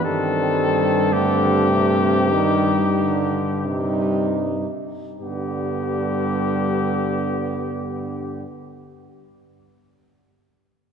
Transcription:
0.04 G2 D#3 G3 C4 A4
1.13 D3 A3 G4
1.71 C3
2.31 D#3 G3 D#4
2.97 D3
3.66 C3 G3 D#4
5.20 G2 D3 G3 B3 G4

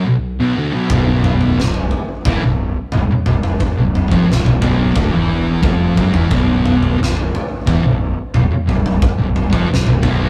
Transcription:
0.05 B1
0.40 B1 B2
0.56 D2 D3
0.73 B1 B2
0.90 B0 B1 B2, kick, floor tom
1.24 mid tom
1.41 floor tom
1.57 B0 B1, snare
1.74 floor tom
1.91 floor tom
2.25 E1 E2 E3, kick, floor tom
2.42 B0 B1
2.92 B0 B1, mid tom
3.11 muted distorted electric guitar stroke, muted fingered electric bass stroke
3.26 B0 B1, floor tom, mid tom
3.43 floor tom, mid tom
3.60 kick, floor tom
3.77 B0 B1
3.95 mid tom
4.09 F1 F2 F3, kick, floor tom
4.27 B0 B1
4.32 snare
4.45 B0 B1, floor tom
4.61 B0 B1 B2, kick, floor tom
4.95 D1 D2 D3, kick, floor tom
5.12 E1 E2 E3
5.63 F1 F2 F3, kick, mid tom
5.97 F#1 F#2 F#3, kick, floor tom, mid tom
6.14 E1 E2 E3, floor tom, mid tom
6.31 B0 B1 B2, kick, floor tom
6.65 mid tom
6.83 floor tom
6.99 B0 B1, snare
7.17 floor tom
7.35 floor tom
7.67 E1 E2 E3, kick, floor tom
7.83 B0 B1
8.34 B0 B1, mid tom
8.52 muted distorted electric guitar stroke, muted fingered electric bass stroke
8.68 B0 B1, floor tom, mid tom
8.86 floor tom, mid tom
9.02 kick, floor tom
9.19 B0 B1
9.36 floor tom, mid tom
9.52 F1 F2 F3, kick, floor tom
9.69 B0 B1
9.74 snare
9.86 B0 B1, floor tom
10.02 B0 B1 B2, kick, floor tom

